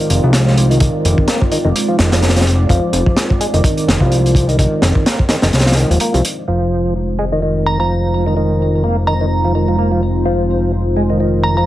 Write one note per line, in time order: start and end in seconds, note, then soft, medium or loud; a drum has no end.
0.00 0.22 D#3 medium
0.00 6.44 G#3 medium
0.00 6.44 C4 medium
0.00 6.44 D#4 medium
0.00 6.44 F4 medium
0.00 6.44 D5 loud
0.10 0.20 F1 medium
0.10 closed hi-hat medium
0.23 0.89 C2 medium
0.23 0.69 F3 medium
0.33 snare loud
0.33 closed hi-hat medium
0.48 snare soft
0.57 closed hi-hat medium
0.70 0.79 D#3 loud
0.70 closed hi-hat soft
0.80 1.27 D#3 medium
0.80 kick loud
0.80 closed hi-hat medium
1.05 1.15 F1 loud
1.05 closed hi-hat medium
1.18 kick medium
1.28 1.41 A#3 medium
1.28 snare loud
1.28 closed hi-hat medium
1.42 kick loud
1.52 1.58 D#3 loud
1.52 closed hi-hat medium
1.65 1.73 F1 medium
1.65 1.70 D#3 loud
1.76 closed hi-hat medium
1.88 1.97 F3 medium
1.99 2.66 F1 medium
1.99 2.12 D#3 medium
1.99 snare loud
1.99 closed hi-hat medium
2.12 2.20 F3 medium
2.12 snare loud
2.12 closed hi-hat medium
2.22 2.35 A#3 medium
2.22 snare medium
2.22 closed hi-hat medium
2.29 snare medium
2.29 closed hi-hat medium
2.36 2.46 F3 medium
2.36 snare medium
2.36 closed hi-hat medium
2.41 snare medium
2.41 closed hi-hat medium
2.47 closed hi-hat medium
2.69 2.80 F1 loud
2.69 3.16 F3 medium
2.69 kick loud
2.69 closed hi-hat medium
2.93 3.03 F1 loud
2.93 closed hi-hat medium
3.06 kick medium
3.17 snare loud
3.17 closed hi-hat medium
3.30 kick medium
3.41 3.47 G#3 medium
3.41 closed hi-hat medium
3.54 3.62 F1 medium
3.54 3.62 D#3 loud
3.54 closed hi-hat soft
3.64 4.00 D#3 medium
3.64 kick loud
3.64 closed hi-hat medium
3.77 closed hi-hat soft
3.88 3.98 F1 medium
3.88 snare loud
3.88 closed hi-hat medium
4.00 4.67 C2 medium
4.00 4.47 F3 medium
4.00 kick medium
4.12 closed hi-hat medium
4.26 closed hi-hat soft
4.35 kick loud
4.35 closed hi-hat medium
4.49 4.57 D#3 loud
4.49 closed hi-hat soft
4.59 5.05 D#3 medium
4.59 kick loud
4.59 closed hi-hat medium
4.82 4.93 F1 loud
4.82 snare loud
4.82 closed hi-hat medium
4.95 kick medium
5.06 5.19 A#3 medium
5.06 snare loud
5.06 closed hi-hat medium
5.19 kick medium
5.29 5.36 D#3 loud
5.29 snare loud
5.29 closed hi-hat medium
5.42 5.51 F1 medium
5.42 5.48 D#3 loud
5.42 snare loud
5.42 closed hi-hat medium
5.53 5.85 C2 medium
5.53 snare medium
5.53 closed hi-hat medium
5.59 snare medium
5.59 closed hi-hat medium
5.66 5.75 F3 medium
5.66 snare medium
5.66 closed hi-hat medium
5.72 snare medium
5.72 closed hi-hat medium
5.77 5.90 D#3 medium
5.77 closed hi-hat medium
5.90 5.98 D#1 medium
5.90 5.99 F3 medium
5.90 closed hi-hat soft
6.00 6.13 A#3 medium
6.00 closed hi-hat medium
6.14 6.22 C2 loud
6.14 6.24 F3 medium
6.14 closed hi-hat soft
6.25 closed hi-hat medium
6.48 11.66 F1 medium
6.48 6.94 F3 medium
6.48 11.66 G#3 medium
6.48 11.66 C4 medium
6.48 11.66 D#4 medium
6.48 11.66 F4 medium
6.48 11.66 C5 medium
7.19 7.25 G#3 medium
7.32 7.40 D#3 medium
7.42 7.78 D#3 medium
7.66 7.75 A#5 medium
7.80 8.25 F3 medium
7.80 7.86 A#5 medium
8.26 8.35 D#3 medium
8.37 8.83 D#3 medium
8.84 8.97 A#3 medium
9.07 9.14 D#3 medium
9.07 9.74 A#5 medium
9.21 9.26 D#3 medium
9.45 9.53 F3 medium
9.55 9.68 D#3 medium
9.68 9.76 F3 medium
9.79 9.91 A#3 medium
9.92 10.01 F3 medium
10.25 10.72 F3 medium
10.96 11.03 G#3 medium
11.10 11.18 D#3 medium
11.20 11.56 D#3 medium
11.43 11.52 A#5 medium
11.57 11.66 F3 medium
11.57 11.64 A#5 medium